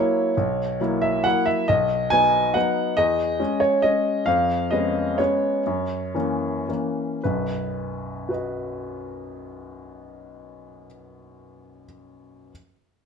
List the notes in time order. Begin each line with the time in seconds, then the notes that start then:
Already playing: F#3 A#3 E4 C#5
0.37 B1
0.81 F#3 A#3 E4
1.02 E5
1.24 F#3 A#3 E4 F#5
1.46 E5
1.68 B1 D#5
2.10 F#3 B3 D#4 G#5
2.54 F#3 B3 D#4 F#5
2.97 E2 D#5
3.39 G#3 C#4
3.60 C#5
3.82 G#3 C#4 D#5
4.26 F2 F5
4.71 G#3 B3 C#4 D#5
5.18 G#3 B3 C#4 C#5
5.66 F#2
6.15 E3 A#3 C#4
6.69 E3 A#3 C#4
7.23 B1 F#2 B4
8.29 F#4 B4
8.33 D#5